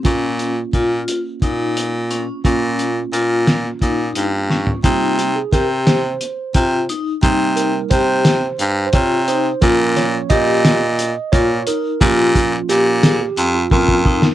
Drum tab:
HH |x-x-x-x-x-x-x-|x-x-x-x-x-x---|x-x-x-x-x-x-x-|x-x-x-x-x-x-x-|
SD |--------------|------o-----o-|----o-o-------|------o-------|
FT |--------------|-------------o|--------------|--------------|
BD |o---o---o-----|o-------o-----|o---o-----o---|o---o-----o---|

HH |x-x-x-x-x-x-x-|x-x-x-x-x-----|
SD |--o---o-------|------o------o|
FT |--------------|--------------|
BD |o---o-----o---|o-o-------ooo-|